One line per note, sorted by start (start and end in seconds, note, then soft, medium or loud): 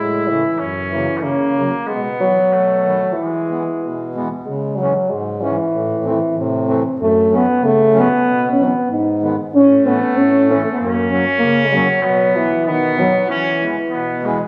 0.00 0.44 A2 medium
0.00 0.29 G#3 medium
0.00 0.60 E4 medium
0.28 0.43 C#3 medium
0.28 0.65 E3 medium
0.28 0.43 E3 medium
0.28 0.44 A3 medium
0.59 1.08 F#2 medium
0.59 1.19 C#4 medium
0.91 1.07 C#3 soft
0.91 1.25 E3 medium
0.91 1.08 F#3 soft
0.91 1.07 A#3 medium
1.17 1.23 A3 medium
1.22 1.72 C#3 medium
1.22 1.88 A#3 medium
1.27 1.56 C#3 medium
1.58 1.71 C#3 medium
1.58 1.72 F#3 medium
1.58 1.72 A#3 medium
1.86 2.37 B2 medium
1.86 2.02 G#3 medium
1.86 2.54 B3 medium
2.20 2.35 E3 medium
2.20 3.14 F#3 loud
2.20 2.35 F#3 medium
2.20 2.36 B3 medium
2.53 3.01 B2 medium
2.53 3.16 A3 medium
2.85 2.99 D#3 medium
2.85 3.00 F#3 medium
2.85 3.00 B3 medium
3.13 4.12 E3 medium
3.17 3.48 E3 medium
3.17 4.11 G#3 medium
3.50 3.63 E3 medium
3.50 3.63 G#3 soft
3.50 3.64 B3 medium
3.82 4.30 B2 medium
4.15 4.28 E3 medium
4.15 4.28 G#3 medium
4.15 4.29 B3 medium
4.45 4.94 C#3 medium
4.45 4.78 G#3 medium
4.76 4.93 E3 medium
4.76 5.11 F#3 medium
4.81 4.93 G#3 medium
4.81 4.94 C#4 medium
5.10 5.58 G#2 medium
5.10 5.44 G#3 medium
5.42 5.56 E3 medium
5.42 6.06 E3 medium
5.42 5.56 G#3 medium
5.42 5.57 C#4 medium
5.71 6.20 A2 medium
6.03 6.18 E3 medium
6.03 6.19 A3 medium
6.03 6.19 C4 medium
6.08 6.36 E3 medium
6.35 6.83 A2 medium
6.35 6.82 C3 medium
6.67 6.82 E3 medium
6.67 6.82 A3 medium
6.67 6.82 C4 medium
6.99 7.47 F#2 medium
6.99 7.38 A3 loud
7.31 7.45 F#3 medium
7.31 7.46 A3 medium
7.31 7.46 C#4 medium
7.36 7.66 B3 loud
7.61 8.09 C#3 medium
7.61 8.01 A3 loud
7.94 8.08 F#3 medium
7.94 8.08 A3 medium
7.94 8.08 C#4 medium
7.99 8.51 B3 loud
8.24 8.72 B2 medium
8.52 8.65 C#4 medium
8.58 8.72 E3 medium
8.58 8.72 F#3 medium
8.58 8.72 B3 medium
8.64 8.90 B3 loud
8.88 9.36 G#2 medium
8.88 9.35 D#4 medium
9.22 9.36 D#3 medium
9.22 9.36 G#3 medium
9.22 9.36 B3 medium
9.53 10.00 A2 medium
9.53 10.76 A3 loud
9.53 9.88 C#4 loud
9.85 9.99 E3 medium
9.85 9.99 A3 medium
9.85 10.18 B3 loud
9.85 9.99 C#4 medium
10.14 10.63 A2 medium
10.14 10.53 C#4 loud
10.49 10.62 E3 medium
10.49 10.62 A3 medium
10.49 10.71 A3 medium
10.49 10.63 C#4 medium
10.72 10.80 B3 medium
10.77 11.26 F#2 medium
10.77 11.11 A#3 medium
10.77 12.04 C#4 loud
11.10 11.25 F#3 medium
11.10 11.25 A#3 medium
11.10 11.25 C#4 medium
11.39 11.89 C#3 medium
11.39 11.67 A#3 loud
11.66 11.74 G#3 medium
11.72 12.03 F#3 loud
11.72 11.87 F#3 medium
11.72 11.87 A#3 medium
11.72 11.88 C#4 medium
12.02 12.51 B2 medium
12.02 12.38 F#3 loud
12.02 12.65 B3 loud
12.35 12.50 E3 medium
12.35 12.70 E3 medium
12.35 12.50 F#3 soft
12.35 12.50 B3 medium
12.65 13.14 B2 medium
12.65 13.01 D#3 medium
12.65 13.25 B3 loud
12.97 13.12 D#3 medium
12.97 13.13 F#3 medium
12.97 13.28 F#3 medium
12.97 13.13 B3 medium
13.28 13.59 E3 medium
13.28 14.21 E3 medium
13.28 13.65 C#4 loud
13.61 13.76 E3 soft
13.61 13.76 G#3 medium
13.61 13.76 B3 medium
13.90 14.40 B2 medium
13.90 14.27 B3 loud
14.23 14.38 E3 medium
14.23 14.39 G#3 medium
14.23 14.48 G#3 medium
14.23 14.39 B3 loud